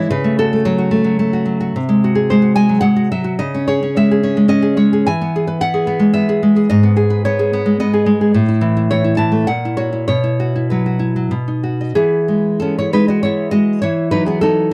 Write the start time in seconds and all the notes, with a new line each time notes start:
Already playing: E3 G#3 E4 C#5
0.10 C#3 B4
0.24 A3
0.39 F#4 A4
0.53 A3
0.65 F#3 C#5
0.78 F#4
0.91 A3
1.04 F#3
1.19 A3
1.33 F#4
1.46 F#3
1.60 F#4
1.76 C3
1.89 G#3
2.04 F#4
2.15 G#4
2.30 G#3 C5
2.42 F#4
2.56 G#3 G#5
2.69 F#3
2.81 G#3 F#5
2.96 F#4
3.12 F#3 E5
3.24 F#4
3.39 C#3 D#5
3.54 C#4
3.68 G#4 C#5
3.83 C#4
3.96 G#3 E5
4.11 G#4
4.23 C#4
4.37 G#3
4.48 C#4 D#5
4.62 G#4
4.77 G#3 C#5
4.93 G#4
5.07 E3 G#5
5.22 B3
5.36 G#4
5.47 B4
5.61 B3 F#5
5.74 G#4
5.87 B3
5.99 G#3
6.13 B3 E5
6.29 G#4
6.43 G#3
6.56 G#4
6.70 G#2 D#5
6.83 B3
6.96 G#4
7.10 B4
7.25 B3 C#5
7.39 G#4
7.53 B3
7.66 G#3
7.80 B3 D#5
7.94 G#4
8.06 G#3
8.21 G#4
8.34 A2
8.48 E4
8.61 E3
8.77 E4
8.91 E3 C#5
9.04 E4
9.17 E3 A5
9.32 A3
9.47 A#2 F#5
9.65 E4
9.77 F#4 C#5
9.93 E4
10.08 B2 C#5
10.24 E4
10.40 F#4
10.56 E4
10.70 F#3 B4
10.86 F#4
10.99 E4
11.16 F#3
11.31 B2
11.48 D#4
11.63 F#4
11.81 D#5
11.95 E3 B3 G#4
12.28 G#3
12.60 B3 C#4 A4
12.79 E4 C#5
12.93 G#3 D#4 B4
13.08 F#4 D#5
13.23 B3 E4 C#5
13.51 G#3 F#4 D#5
13.82 E3 E4 C#5
14.11 F#3 D#4 B4
14.26 B3 G#4
14.41 B3 D#4 A4